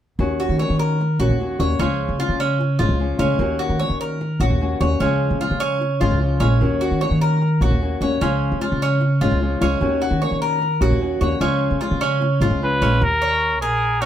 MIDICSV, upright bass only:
0, 0, Header, 1, 2, 480
1, 0, Start_track
1, 0, Key_signature, -6, "minor"
1, 0, Tempo, 400267
1, 242, Time_signature, 4, 2, 24, 8
1, 16855, End_track
2, 0, Start_track
2, 0, Title_t, "Upright bass"
2, 0, Program_c, 0, 32
2, 225, Note_on_c, 0, 39, 88
2, 576, Note_off_c, 0, 39, 0
2, 589, Note_on_c, 0, 51, 71
2, 824, Note_off_c, 0, 51, 0
2, 837, Note_on_c, 0, 51, 77
2, 1411, Note_off_c, 0, 51, 0
2, 1432, Note_on_c, 0, 34, 76
2, 1544, Note_off_c, 0, 34, 0
2, 1551, Note_on_c, 0, 39, 75
2, 1900, Note_off_c, 0, 39, 0
2, 1914, Note_on_c, 0, 39, 79
2, 2143, Note_off_c, 0, 39, 0
2, 2150, Note_on_c, 0, 37, 80
2, 2495, Note_off_c, 0, 37, 0
2, 2502, Note_on_c, 0, 49, 70
2, 2737, Note_off_c, 0, 49, 0
2, 2744, Note_on_c, 0, 49, 74
2, 3326, Note_off_c, 0, 49, 0
2, 3351, Note_on_c, 0, 32, 78
2, 3456, Note_off_c, 0, 32, 0
2, 3464, Note_on_c, 0, 37, 79
2, 3815, Note_off_c, 0, 37, 0
2, 3822, Note_on_c, 0, 37, 84
2, 4057, Note_off_c, 0, 37, 0
2, 4064, Note_on_c, 0, 39, 87
2, 4419, Note_off_c, 0, 39, 0
2, 4431, Note_on_c, 0, 51, 74
2, 4661, Note_off_c, 0, 51, 0
2, 4668, Note_on_c, 0, 51, 78
2, 5249, Note_off_c, 0, 51, 0
2, 5273, Note_on_c, 0, 34, 81
2, 5392, Note_off_c, 0, 34, 0
2, 5399, Note_on_c, 0, 39, 76
2, 5747, Note_off_c, 0, 39, 0
2, 5763, Note_on_c, 0, 39, 85
2, 5995, Note_off_c, 0, 39, 0
2, 6000, Note_on_c, 0, 37, 87
2, 6348, Note_off_c, 0, 37, 0
2, 6361, Note_on_c, 0, 49, 72
2, 6595, Note_off_c, 0, 49, 0
2, 6606, Note_on_c, 0, 49, 74
2, 7180, Note_off_c, 0, 49, 0
2, 7207, Note_on_c, 0, 32, 81
2, 7318, Note_off_c, 0, 32, 0
2, 7325, Note_on_c, 0, 37, 76
2, 7672, Note_off_c, 0, 37, 0
2, 7680, Note_on_c, 0, 34, 83
2, 7915, Note_off_c, 0, 34, 0
2, 7928, Note_on_c, 0, 39, 80
2, 8273, Note_off_c, 0, 39, 0
2, 8287, Note_on_c, 0, 51, 75
2, 8519, Note_off_c, 0, 51, 0
2, 8526, Note_on_c, 0, 51, 74
2, 9100, Note_off_c, 0, 51, 0
2, 9124, Note_on_c, 0, 34, 79
2, 9235, Note_off_c, 0, 34, 0
2, 9242, Note_on_c, 0, 39, 80
2, 9590, Note_off_c, 0, 39, 0
2, 9601, Note_on_c, 0, 39, 85
2, 9836, Note_off_c, 0, 39, 0
2, 9852, Note_on_c, 0, 37, 89
2, 10195, Note_off_c, 0, 37, 0
2, 10214, Note_on_c, 0, 49, 71
2, 10443, Note_off_c, 0, 49, 0
2, 10456, Note_on_c, 0, 49, 79
2, 11026, Note_off_c, 0, 49, 0
2, 11051, Note_on_c, 0, 32, 76
2, 11160, Note_off_c, 0, 32, 0
2, 11167, Note_on_c, 0, 37, 79
2, 11513, Note_off_c, 0, 37, 0
2, 11528, Note_on_c, 0, 37, 83
2, 11754, Note_off_c, 0, 37, 0
2, 11761, Note_on_c, 0, 39, 85
2, 12110, Note_off_c, 0, 39, 0
2, 12122, Note_on_c, 0, 51, 77
2, 12356, Note_off_c, 0, 51, 0
2, 12370, Note_on_c, 0, 51, 72
2, 12942, Note_off_c, 0, 51, 0
2, 12963, Note_on_c, 0, 34, 76
2, 13074, Note_off_c, 0, 34, 0
2, 13081, Note_on_c, 0, 39, 77
2, 13429, Note_off_c, 0, 39, 0
2, 13442, Note_on_c, 0, 39, 81
2, 13672, Note_off_c, 0, 39, 0
2, 13679, Note_on_c, 0, 37, 84
2, 14028, Note_off_c, 0, 37, 0
2, 14040, Note_on_c, 0, 49, 73
2, 14274, Note_off_c, 0, 49, 0
2, 14284, Note_on_c, 0, 49, 80
2, 14857, Note_off_c, 0, 49, 0
2, 14877, Note_on_c, 0, 32, 80
2, 14986, Note_off_c, 0, 32, 0
2, 14993, Note_on_c, 0, 37, 80
2, 15343, Note_off_c, 0, 37, 0
2, 15367, Note_on_c, 0, 34, 80
2, 15596, Note_off_c, 0, 34, 0
2, 15607, Note_on_c, 0, 39, 91
2, 16326, Note_off_c, 0, 39, 0
2, 16326, Note_on_c, 0, 34, 93
2, 16855, Note_off_c, 0, 34, 0
2, 16855, End_track
0, 0, End_of_file